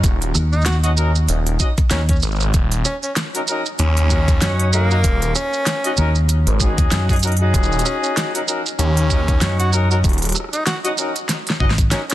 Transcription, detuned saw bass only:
0.04 0.33 D#1 loud
1.29 1.58 D#1 loud
2.23 2.52 G#1 loud
2.54 2.83 D#1 loud
3.79 4.39 D#2 loud
5.04 5.33 D#1 loud
6.47 6.75 G#1 loud
7.54 7.83 D#1 loud
8.79 9.39 D#2 loud
10.04 10.33 D#1 loud

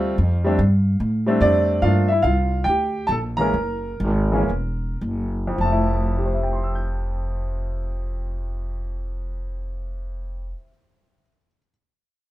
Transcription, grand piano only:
0.00 0.15 G3 loud
0.00 0.15 A3 medium
0.00 0.15 C4 medium
0.00 0.16 F4 medium
0.00 1.37 F5 medium
0.44 0.57 G3 medium
0.44 0.58 A3 medium
0.44 0.58 C4 medium
0.44 0.59 D4 medium
1.26 1.79 G3 medium
1.26 1.80 A3 medium
1.26 1.80 C4 medium
1.26 1.42 D4 medium
1.41 1.81 D4 medium
1.41 1.84 D5 loud
1.82 2.07 F3 medium
1.82 2.07 A3 medium
1.82 2.07 A#3 medium
1.82 2.08 D4 medium
1.82 2.09 F4 medium
1.82 2.10 F5 medium
2.08 2.24 E4 medium
2.08 2.24 E5 medium
2.22 2.62 F5 medium
2.26 2.64 F4 medium
2.64 3.09 G5 medium
2.69 3.08 G4 medium
3.07 3.14 A5 loud
3.11 3.18 A4 medium
3.37 3.52 E3 medium
3.37 3.52 G#3 medium
3.37 3.53 A#3 medium
3.37 3.53 C#4 medium
3.37 4.98 A#5 loud
3.41 5.00 A#4 medium
4.32 4.48 E3 medium
4.32 4.48 G#3 medium
4.32 4.49 A#3 medium
4.32 4.49 C#4 medium
5.47 10.45 F2 medium
5.56 10.53 F3 medium
5.61 10.62 A3 medium
5.61 10.55 A5 medium
5.72 10.70 E4 medium
6.18 11.12 G4 soft
6.26 11.19 C5 soft
6.34 11.28 E5 soft
6.43 11.37 G5 soft
6.53 11.47 C6 soft
6.64 11.57 E6 soft
6.75 11.69 G6 soft

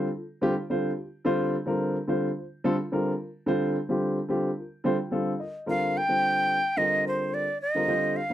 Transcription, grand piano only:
0.15 0.22 F4 soft
0.15 0.23 A4 soft
0.41 0.52 D3 medium
0.41 0.52 G3 medium
0.41 0.52 C4 medium
0.41 0.53 F4 medium
0.41 0.53 G4 loud
0.56 0.63 F4 soft
0.70 0.89 D3 medium
0.70 0.89 G3 medium
0.70 0.90 C4 medium
0.70 0.90 F4 medium
0.70 0.90 C5 medium
0.97 1.04 F4 soft
0.97 1.05 G4 soft
1.25 1.54 D3 loud
1.25 1.54 G3 medium
1.25 1.54 C4 medium
1.25 1.54 F4 medium
1.25 1.54 C5 loud
1.66 1.95 D3 medium
1.66 1.95 G3 medium
1.66 1.95 C4 medium
1.66 1.96 F4 medium
1.66 1.96 A#4 medium
2.07 2.27 D3 medium
2.07 2.27 G3 medium
2.07 2.28 C4 medium
2.07 2.28 F4 medium
2.07 2.28 C5 medium
2.36 2.43 F4 soft
2.36 2.44 C5 soft
2.64 2.74 D3 loud
2.64 2.74 G3 medium
2.64 2.74 C4 medium
2.64 2.74 F4 medium
2.64 2.74 A4 loud
2.78 2.84 F4 soft
2.78 2.85 A4 soft
2.92 3.11 D3 medium
2.92 3.11 G3 medium
2.92 3.11 C4 medium
2.92 3.11 F4 medium
2.92 3.12 A#4 medium
3.19 3.26 F4 soft
3.46 3.75 D3 loud
3.46 3.75 G3 medium
3.46 3.75 C4 medium
3.46 3.75 F4 medium
3.46 3.76 C5 loud
3.89 4.17 D3 medium
3.89 4.17 G3 medium
3.89 4.17 C4 medium
3.89 4.18 F4 medium
3.89 4.18 G4 medium
4.28 4.48 D3 medium
4.28 4.48 G3 medium
4.28 4.49 C4 medium
4.28 4.49 F4 medium
4.28 4.49 G4 medium
4.57 4.64 F4 soft
4.57 4.64 A#4 soft
4.84 4.94 D3 medium
4.84 4.94 G3 medium
4.84 4.95 C4 medium
4.84 4.95 F4 medium
4.84 4.95 C5 loud
4.84 5.10 G5 medium
4.99 5.05 F4 soft
5.11 5.31 D3 medium
5.11 5.31 G3 medium
5.11 5.31 C4 medium
5.11 5.32 F4 medium
5.11 5.31 A4 medium
5.11 5.38 F5 medium
5.40 5.47 F4 soft
5.40 5.47 A#4 soft
5.40 5.65 D#5 medium
5.66 5.95 D3 medium
5.66 5.95 G3 medium
5.66 5.95 C4 medium
5.66 5.96 F4 medium
5.66 5.96 A#4 medium
6.08 6.56 D3 medium
6.08 6.56 G3 medium
6.08 6.56 C4 medium
6.08 6.56 F4 medium
6.08 6.56 C5 medium
6.77 7.44 D3 medium
6.77 7.44 G3 medium
6.77 7.44 C4 medium
6.77 7.45 F4 medium
6.77 7.45 A#4 medium
7.74 7.84 D3 medium
7.74 7.84 G3 medium
7.74 7.84 C4 medium
7.74 7.84 F4 medium
7.74 7.85 A#4 medium
7.87 8.16 D3 medium
7.87 8.16 G3 medium
7.87 8.16 C4 medium
7.87 8.17 F4 medium
7.87 8.17 C5 medium
8.30 8.33 D3 medium
8.30 8.33 G3 medium

